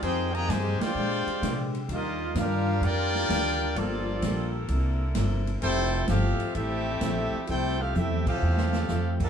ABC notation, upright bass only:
X:1
M:4/4
L:1/8
Q:"Swing" 1/4=129
K:F
V:1 name="Upright bass" clef=bass
F,,2 G,, z B,, z C,2 | _E,,2 G,,2 F,,2 D,,2 | G,,,2 B,,,2 C,,2 G,,,2 | F,,,2 G,,, z A,,,2 B,,, z |
C,,2 (3F,, E,, C,, E,,2 F,,2 |]